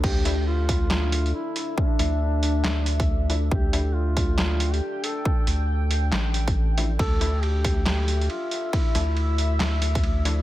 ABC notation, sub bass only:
X:1
M:4/4
L:1/8
Q:"Swing 16ths" 1/4=138
K:Dm
V:1 name="Sub bass" clef=bass
D,,6 z2 | z D,,3 D,,4 | D,,6 z2 | z D,,3 A,,,4 |
D,,6 z2 | z D,,3 D,,4 |]